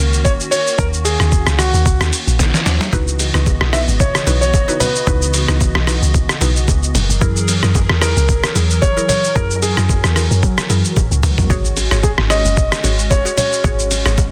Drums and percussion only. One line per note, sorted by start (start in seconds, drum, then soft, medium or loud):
0.13 shaker medium
0.25 kick loud
0.25 shaker medium
0.40 shaker medium
0.52 open hi-hat soft
0.52 shaker medium
0.67 shaker medium
0.79 kick loud
0.79 shaker medium
0.93 shaker medium
1.05 open hi-hat medium
1.05 shaker loud
1.20 cross-stick medium
1.20 shaker medium
1.32 kick loud
1.32 shaker medium
1.47 cross-stick loud
1.47 shaker medium
1.59 cross-stick loud
1.59 open hi-hat medium
1.59 shaker medium
1.74 shaker medium
1.86 kick loud
1.86 shaker medium
2.01 cross-stick loud
2.01 shaker medium
2.13 open hi-hat medium
2.13 shaker medium
2.27 shaker soft
2.39 kick loud
2.39 snare medium
2.39 shaker medium
2.54 snare medium
2.54 shaker medium
2.66 snare loud
2.66 open hi-hat medium
2.66 shaker medium
2.81 snare medium
2.81 shaker medium
2.93 kick loud
2.93 low conga medium
2.93 shaker medium
3.08 shaker medium
3.19 open hi-hat medium
3.19 high bongo soft
3.19 low bongo soft
3.19 shaker medium
3.34 cross-stick medium
3.34 shaker medium
3.46 kick loud
3.46 high bongo medium
3.46 shaker medium
3.61 cross-stick medium
3.73 cross-stick loud
3.73 open hi-hat medium
3.73 shaker medium
3.88 shaker medium
4.00 kick loud
4.00 low conga medium
4.00 shaker medium
4.15 cross-stick loud
4.15 shaker medium
4.27 open hi-hat medium
4.27 low bongo medium
4.27 shaker medium
4.42 shaker medium
4.54 kick loud
4.54 high bongo medium
4.54 shaker medium
4.69 shaker medium
4.80 open hi-hat medium
4.80 low bongo medium
4.80 low conga medium
4.80 shaker medium
4.95 shaker medium
5.07 kick loud
5.07 low conga medium
5.07 shaker medium
5.22 shaker medium
5.34 open hi-hat medium
5.34 high bongo soft
5.34 low bongo soft
5.34 shaker loud
5.48 cross-stick medium
5.48 shaker medium
5.61 kick loud
5.61 high bongo medium
5.61 shaker medium
5.75 cross-stick loud
5.87 cross-stick loud
5.87 open hi-hat medium
5.87 shaker medium
6.02 shaker medium
6.14 kick loud
6.14 low conga medium
6.14 shaker medium
6.29 cross-stick loud
6.29 shaker medium
6.41 open hi-hat medium
6.41 low bongo medium
6.41 shaker medium
6.56 shaker medium
6.68 kick loud
6.68 high bongo medium
6.68 shaker medium
6.83 shaker medium
6.95 open hi-hat medium
6.95 low bongo medium
6.95 low conga medium
6.95 shaker medium
7.10 shaker medium
7.21 kick loud
7.21 low conga medium
7.21 shaker medium
7.36 shaker medium
7.48 open hi-hat medium
7.48 high bongo soft
7.48 low bongo medium
7.48 shaker loud
7.63 cross-stick medium
7.63 shaker medium
7.75 kick loud
7.75 high bongo medium
7.75 shaker medium
7.89 cross-stick loud
8.02 cross-stick medium
8.02 open hi-hat medium
8.02 shaker medium
8.17 shaker medium
8.29 kick loud
8.29 low conga medium
8.29 shaker medium
8.44 cross-stick loud
8.44 shaker medium
8.56 open hi-hat medium
8.56 low bongo medium
8.56 shaker medium
8.70 shaker medium
8.82 kick loud
8.82 high bongo medium
8.82 shaker medium
8.97 shaker medium
9.09 open hi-hat soft
9.09 low bongo medium
9.09 low conga medium
9.09 shaker medium
9.24 shaker medium
9.36 kick loud
9.36 low conga medium
9.36 shaker medium
9.51 shaker medium
9.62 open hi-hat medium
9.62 high bongo soft
9.62 low bongo soft
9.62 shaker loud
9.77 cross-stick medium
9.77 shaker medium
9.89 kick loud
9.89 high bongo medium
9.89 shaker medium
10.04 cross-stick loud
10.04 shaker medium
10.16 cross-stick medium
10.16 open hi-hat medium
10.16 shaker medium
10.31 shaker medium
10.43 kick loud
10.43 low conga medium
10.43 shaker medium
10.58 cross-stick loud
10.58 shaker medium
10.70 open hi-hat medium
10.70 low bongo medium
10.70 shaker medium
10.85 shaker medium
10.96 kick loud
10.96 high tom medium
10.96 high bongo medium
10.96 shaker medium
11.12 shaker medium
11.23 mid tom loud
11.23 open hi-hat medium
11.23 low bongo medium
11.23 low conga medium
11.23 shaker medium
11.38 floor tom loud
11.38 shaker medium
11.50 kick loud
11.50 low conga medium
11.50 shaker medium
11.65 shaker medium
11.77 open hi-hat medium
11.77 high bongo soft
11.77 low bongo soft
11.77 shaker medium
11.91 cross-stick medium
11.91 shaker medium
12.03 kick loud
12.03 high bongo medium
12.03 shaker medium
12.18 cross-stick loud
12.30 cross-stick loud
12.30 open hi-hat medium
12.30 shaker medium
12.45 shaker medium
12.57 kick loud
12.57 low conga medium
12.57 shaker medium
12.72 cross-stick loud
12.72 shaker medium
12.84 open hi-hat medium
12.84 low bongo medium
12.84 shaker medium
12.99 shaker medium
13.11 kick loud
13.11 high bongo medium
13.11 shaker medium
13.26 shaker medium
13.37 open hi-hat medium
13.37 low bongo medium
13.37 low conga medium
13.37 shaker medium
13.53 shaker medium
13.64 kick loud
13.64 low conga medium
13.64 shaker medium
13.79 shaker medium
13.91 open hi-hat medium
13.91 high bongo soft
13.91 low bongo soft
13.91 shaker loud
14.06 cross-stick medium
14.06 shaker medium
14.18 kick loud
14.18 high bongo medium
14.18 shaker medium